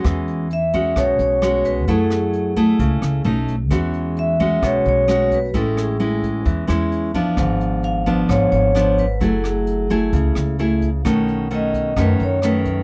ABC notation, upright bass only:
X:1
M:4/4
L:1/8
Q:1/4=131
K:E
V:1 name="Upright bass" clef=bass
E,,4 B,,, B,,,3 | F,,4 C,, C,, B,,,2 | E,,4 B,,, B,,,3 | A,,,4 E,, E,,3 |
G,,,4 G,,, G,,,3 | F,,,4 C,, C,,3 | B,,,4 F,, F,,3 |]